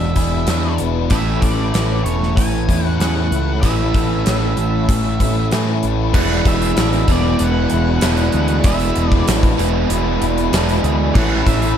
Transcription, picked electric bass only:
0.00 0.14 E1 medium
0.16 0.46 E1 medium
0.48 0.77 E2 medium
0.80 1.09 E1 medium
1.11 1.40 A1 loud
1.42 1.72 A1 medium
1.74 2.03 A1 medium
2.05 2.35 E1 medium
2.37 2.67 A1 medium
2.68 2.98 E2 medium
3.00 3.29 E2 medium
3.31 3.61 C#2 medium
3.63 3.92 A1 medium
3.94 4.24 A1 medium
4.26 4.55 A1 medium
4.58 4.87 A1 medium
4.89 5.18 A1 medium
5.20 5.50 A1 medium
5.53 5.81 A2 medium
5.83 6.12 A1 medium
6.14 6.40 E1 loud
6.45 6.72 E1 loud
6.77 7.03 A1 medium
7.08 7.34 E1 medium
7.40 7.66 E1 loud
7.72 7.98 E1 medium
8.03 8.29 E1 medium
8.34 8.60 D2 medium
8.64 8.91 E1 loud
8.96 9.22 E1 medium
9.28 9.54 A1 medium
9.59 9.85 E1 medium
9.90 10.16 E1 loud
10.21 10.48 E1 medium
10.52 10.79 E1 medium
10.84 11.10 D2 medium
11.15 11.42 A1 loud
11.47 11.73 A1 loud

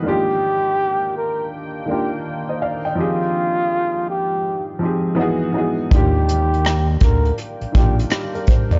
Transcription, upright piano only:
0.02 1.03 D#3 medium
0.02 1.04 A#3 medium
0.02 1.05 D4 medium
0.07 1.05 F4 medium
0.07 1.06 G4 medium
1.86 2.38 D#3 medium
1.86 2.39 A#3 medium
1.86 2.39 D4 medium
1.90 2.40 F4 medium
1.90 2.41 A#4 medium
2.49 2.62 C5 medium
2.49 2.61 D#5 medium
2.62 2.84 D5 medium
2.62 2.84 F5 medium
2.85 3.20 D#5 medium
2.85 3.20 G5 medium
2.95 3.96 F3 medium
2.95 3.97 C4 medium
2.95 3.97 D#4 medium
2.95 3.98 G4 medium
3.00 3.99 G#4 medium
4.79 5.17 F3 medium
4.79 5.18 C4 medium
4.79 5.16 D#4 medium
4.83 5.19 G4 medium
4.83 5.19 G#4 medium
5.15 5.48 E3 medium
5.15 5.48 B3 medium
5.15 5.49 D#4 medium
5.20 5.50 F#4 medium
5.20 5.51 G#4 loud
5.52 5.81 E3 medium
5.52 5.82 B3 medium
5.52 5.82 D#4 medium
5.57 5.83 F#4 medium
5.57 5.84 G#4 medium
5.90 6.90 D#3 medium
5.90 6.90 A#3 medium
5.90 6.91 D4 medium
5.95 6.92 F4 medium
5.95 6.92 G4 medium
7.72 8.24 D#3 medium
7.72 8.24 A#3 medium
7.72 8.11 D4 medium
7.76 8.12 F4 medium
7.76 8.13 A#4 medium
8.11 8.33 D#4 medium
8.11 8.33 G4 medium
8.35 8.48 G4 medium
8.35 8.47 A#4 medium
8.48 8.70 C5 medium
8.72 8.79 A#4 medium
8.72 8.79 D5 medium

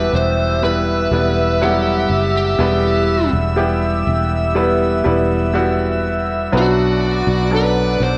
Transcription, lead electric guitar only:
0.00 0.15 B4 medium
0.16 0.63 C5 medium
0.64 1.64 B4 medium
1.63 2.35 G4 medium
2.37 3.30 G4 medium
6.57 7.49 F#4 medium
7.55 8.03 B4 medium
8.03 8.18 C5 medium

